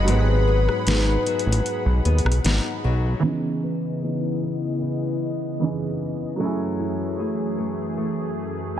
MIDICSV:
0, 0, Header, 1, 8, 480
1, 0, Start_track
1, 0, Key_signature, 4, "minor"
1, 0, Tempo, 789474
1, 48, Time_signature, 4, 2, 24, 8
1, 5349, End_track
2, 0, Start_track
2, 0, Title_t, "Synth bell"
2, 0, Program_c, 0, 98
2, 0, Note_on_c, 0, 85, 54
2, 0, Note_on_c, 0, 87, 56
2, 50, Note_on_c, 0, 83, 67
2, 113, Note_on_c, 0, 90, 52
2, 282, Note_off_c, 0, 85, 0
2, 1107, Note_off_c, 0, 87, 0
2, 1213, Note_off_c, 0, 83, 0
2, 1244, Note_off_c, 0, 90, 0
2, 5349, End_track
3, 0, Start_track
3, 0, Title_t, "Soft synth lead"
3, 0, Program_c, 1, 80
3, 60, Note_on_c, 1, 71, 106
3, 1470, Note_off_c, 1, 71, 0
3, 5349, End_track
4, 0, Start_track
4, 0, Title_t, "Grand piano"
4, 0, Program_c, 2, 0
4, 0, Control_c, 2, 64, 127
4, 27, Note_on_c, 2, 54, 70
4, 42, Note_on_c, 2, 56, 63
4, 56, Note_on_c, 2, 59, 60
4, 70, Note_on_c, 2, 63, 64
4, 83, Note_on_c, 2, 67, 58
4, 105, Note_off_c, 2, 67, 0
4, 123, Note_on_c, 2, 68, 74
4, 1933, Note_off_c, 2, 54, 0
4, 1941, Note_off_c, 2, 56, 0
4, 1944, Note_on_c, 2, 52, 70
4, 1948, Note_off_c, 2, 59, 0
4, 1955, Note_off_c, 2, 63, 0
4, 1958, Note_on_c, 2, 59, 62
4, 1973, Note_on_c, 2, 61, 62
4, 1975, Control_c, 2, 64, 0
4, 1981, Note_off_c, 2, 68, 0
4, 1987, Note_on_c, 2, 63, 64
4, 2001, Note_on_c, 2, 68, 77
4, 2090, Control_c, 2, 64, 127
4, 3372, Note_off_c, 2, 52, 0
4, 3379, Note_off_c, 2, 59, 0
4, 3386, Note_off_c, 2, 61, 0
4, 3393, Note_off_c, 2, 63, 0
4, 3400, Note_off_c, 2, 68, 0
4, 3402, Note_on_c, 2, 52, 56
4, 3409, Note_on_c, 2, 59, 49
4, 3416, Note_on_c, 2, 61, 50
4, 3423, Note_on_c, 2, 63, 48
4, 3430, Note_on_c, 2, 68, 57
4, 3867, Note_on_c, 2, 54, 67
4, 3882, Note_on_c, 2, 57, 62
4, 3885, Note_off_c, 2, 52, 0
4, 3887, Note_off_c, 2, 61, 0
4, 3889, Note_off_c, 2, 59, 0
4, 3896, Note_off_c, 2, 63, 0
4, 3896, Note_on_c, 2, 61, 64
4, 3897, Control_c, 2, 64, 0
4, 3899, Note_off_c, 2, 68, 0
4, 3910, Note_on_c, 2, 64, 65
4, 3924, Note_on_c, 2, 68, 75
4, 3995, Control_c, 2, 64, 127
4, 5349, Note_off_c, 2, 54, 0
4, 5349, Note_off_c, 2, 57, 0
4, 5349, Note_off_c, 2, 61, 0
4, 5349, Note_off_c, 2, 64, 0
4, 5349, Note_off_c, 2, 68, 0
4, 5349, End_track
5, 0, Start_track
5, 0, Title_t, "Analog synth pad"
5, 0, Program_c, 3, 89
5, 0, Note_on_c, 3, 68, 78
5, 0, Note_on_c, 3, 78, 73
5, 0, Note_on_c, 3, 83, 90
5, 1944, Note_off_c, 3, 68, 0
5, 1944, Note_off_c, 3, 78, 0
5, 1944, Note_off_c, 3, 83, 0
5, 1967, Note_on_c, 3, 59, 67
5, 1968, Note_on_c, 3, 49, 74
5, 1968, Note_on_c, 3, 52, 70
5, 1968, Note_on_c, 3, 75, 81
5, 3868, Note_off_c, 3, 59, 0
5, 3869, Note_off_c, 3, 49, 0
5, 3869, Note_off_c, 3, 52, 0
5, 3869, Note_off_c, 3, 75, 0
5, 3887, Note_on_c, 3, 52, 68
5, 3887, Note_on_c, 3, 57, 68
5, 3888, Note_on_c, 3, 42, 71
5, 3889, Note_on_c, 3, 68, 82
5, 5349, Note_off_c, 3, 42, 0
5, 5349, Note_off_c, 3, 52, 0
5, 5349, Note_off_c, 3, 57, 0
5, 5349, Note_off_c, 3, 68, 0
5, 5349, End_track
6, 0, Start_track
6, 0, Title_t, "Nylon-string guitar"
6, 0, Program_c, 4, 24
6, 0, Note_on_c, 4, 54, 68
6, 0, Note_on_c, 4, 59, 64
6, 0, Note_on_c, 4, 63, 75
6, 49, Note_on_c, 4, 44, 93
6, 286, Note_off_c, 4, 59, 0
6, 289, Note_on_c, 4, 59, 64
6, 522, Note_off_c, 4, 54, 0
6, 529, Note_on_c, 4, 54, 63
6, 531, Note_off_c, 4, 59, 0
6, 533, Note_on_c, 4, 59, 60
6, 534, Note_off_c, 4, 63, 0
6, 537, Note_on_c, 4, 63, 65
6, 761, Note_off_c, 4, 54, 0
6, 769, Note_on_c, 4, 54, 63
6, 1245, Note_off_c, 4, 59, 0
6, 1248, Note_on_c, 4, 59, 67
6, 1485, Note_off_c, 4, 63, 0
6, 1488, Note_on_c, 4, 63, 69
6, 1721, Note_off_c, 4, 54, 0
6, 1728, Note_on_c, 4, 54, 66
6, 1968, Note_off_c, 4, 44, 0
6, 1969, Note_on_c, 4, 49, 79
6, 2016, Note_off_c, 4, 54, 0
6, 2207, Note_off_c, 4, 59, 0
6, 2210, Note_on_c, 4, 59, 52
6, 2446, Note_off_c, 4, 59, 0
6, 2449, Note_on_c, 4, 52, 54
6, 2453, Note_on_c, 4, 59, 54
6, 2454, Note_off_c, 4, 63, 0
6, 2456, Note_on_c, 4, 63, 59
6, 2686, Note_off_c, 4, 52, 0
6, 2689, Note_on_c, 4, 52, 58
6, 2926, Note_off_c, 4, 52, 0
6, 2928, Note_on_c, 4, 52, 63
6, 3401, Note_off_c, 4, 59, 0
6, 3409, Note_on_c, 4, 59, 54
6, 3886, Note_off_c, 4, 52, 0
6, 3889, Note_off_c, 4, 49, 0
6, 3889, Note_on_c, 4, 54, 83
6, 3936, Note_off_c, 4, 59, 0
6, 3940, Note_off_c, 4, 63, 0
6, 4129, Note_on_c, 4, 64, 55
6, 4365, Note_off_c, 4, 64, 0
6, 4368, Note_on_c, 4, 57, 53
6, 4372, Note_on_c, 4, 64, 58
6, 4375, Note_on_c, 4, 68, 61
6, 4601, Note_off_c, 4, 57, 0
6, 4608, Note_on_c, 4, 57, 58
6, 4840, Note_off_c, 4, 57, 0
6, 4847, Note_on_c, 4, 57, 64
6, 5320, Note_off_c, 4, 64, 0
6, 5327, Note_on_c, 4, 64, 58
6, 5349, Note_off_c, 4, 54, 0
6, 5349, Note_off_c, 4, 57, 0
6, 5349, Note_off_c, 4, 64, 0
6, 5349, Note_off_c, 4, 68, 0
6, 5349, End_track
7, 0, Start_track
7, 0, Title_t, "Analog synth bass"
7, 0, Program_c, 5, 38
7, 48, Note_on_c, 5, 32, 111
7, 416, Note_off_c, 5, 32, 0
7, 528, Note_on_c, 5, 32, 92
7, 712, Note_off_c, 5, 32, 0
7, 889, Note_on_c, 5, 33, 94
7, 981, Note_off_c, 5, 33, 0
7, 1129, Note_on_c, 5, 35, 93
7, 1221, Note_off_c, 5, 35, 0
7, 1248, Note_on_c, 5, 39, 87
7, 1340, Note_off_c, 5, 39, 0
7, 1368, Note_on_c, 5, 35, 87
7, 1460, Note_off_c, 5, 35, 0
7, 1488, Note_on_c, 5, 32, 98
7, 1580, Note_off_c, 5, 32, 0
7, 1729, Note_on_c, 5, 35, 87
7, 1912, Note_off_c, 5, 35, 0
7, 5349, End_track
8, 0, Start_track
8, 0, Title_t, "Drums"
8, 47, Note_on_c, 9, 42, 69
8, 108, Note_off_c, 9, 42, 0
8, 417, Note_on_c, 9, 37, 67
8, 478, Note_off_c, 9, 37, 0
8, 527, Note_on_c, 9, 42, 72
8, 536, Note_on_c, 9, 38, 126
8, 588, Note_off_c, 9, 42, 0
8, 597, Note_off_c, 9, 38, 0
8, 769, Note_on_c, 9, 42, 45
8, 830, Note_off_c, 9, 42, 0
8, 848, Note_on_c, 9, 42, 60
8, 909, Note_off_c, 9, 42, 0
8, 927, Note_on_c, 9, 42, 73
8, 988, Note_off_c, 9, 42, 0
8, 1008, Note_on_c, 9, 42, 75
8, 1069, Note_off_c, 9, 42, 0
8, 1248, Note_on_c, 9, 42, 41
8, 1309, Note_off_c, 9, 42, 0
8, 1328, Note_on_c, 9, 42, 54
8, 1375, Note_on_c, 9, 37, 101
8, 1389, Note_off_c, 9, 42, 0
8, 1408, Note_on_c, 9, 42, 67
8, 1436, Note_off_c, 9, 37, 0
8, 1469, Note_off_c, 9, 42, 0
8, 1486, Note_on_c, 9, 42, 71
8, 1495, Note_on_c, 9, 38, 102
8, 1547, Note_off_c, 9, 42, 0
8, 1556, Note_off_c, 9, 38, 0
8, 5349, End_track
0, 0, End_of_file